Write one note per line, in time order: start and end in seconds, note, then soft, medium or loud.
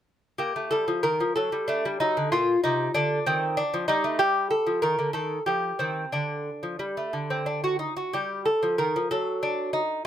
0.38 0.55 A#3 soft
0.38 0.70 G4 medium
0.56 0.71 A3 soft
0.71 0.87 G3 soft
0.71 1.02 A4 medium
0.88 1.03 F3 soft
1.03 1.19 D#3 medium
1.03 1.35 A#4 medium
1.20 1.36 F3 soft
1.36 1.52 F#3 soft
1.36 1.67 A4 medium
1.52 1.68 G3 medium
1.68 1.84 A3 medium
1.68 1.99 D4 medium
1.85 2.00 G3 medium
2.00 2.16 F#3 medium
2.00 2.31 D#4 medium
2.17 2.32 D3 medium
2.32 2.55 A#2 medium
2.32 2.63 F4 medium
2.64 2.87 C3 medium
2.64 2.94 D#4 medium
2.94 3.18 D3 medium
2.94 3.25 D4 medium
3.26 3.61 D#3 medium
3.26 3.57 C4 medium
3.57 3.88 D4 medium
3.74 3.88 F3 medium
3.88 4.04 G3 medium
3.88 4.18 D#4 medium
4.04 4.19 A3 medium
4.19 4.54 G3 medium
4.19 4.50 G4 medium
4.51 4.81 A4 medium
4.67 4.82 F3 medium
4.82 4.98 D#3 medium
4.82 5.13 A#4 medium
4.99 5.14 D3 medium
5.13 5.38 D#3 medium
5.13 5.45 A4 medium
5.46 5.71 F3 medium
5.46 5.78 G4 medium
5.79 6.04 D#3 soft
5.79 6.11 C4 medium
6.12 6.49 D3 soft
6.12 7.08 D4 medium
6.63 6.79 F3 soft
6.79 6.95 G3 soft
6.97 7.12 A3 soft
7.13 7.85 D3 soft
7.30 7.46 C4 soft
7.46 7.63 D4 soft
7.64 7.79 F#4 medium
7.79 7.96 D#4 medium
7.97 8.13 F#4 medium
8.13 8.49 G3 medium
8.13 8.45 G4 medium
8.45 8.77 A4 medium
8.63 8.78 F3 soft
8.78 8.94 D#3 medium
8.78 9.09 A#4 medium
8.96 9.11 F3 soft
9.11 9.80 F#3 medium
9.11 9.41 A4 medium
9.43 9.73 D4 medium
9.73 10.04 D#4 medium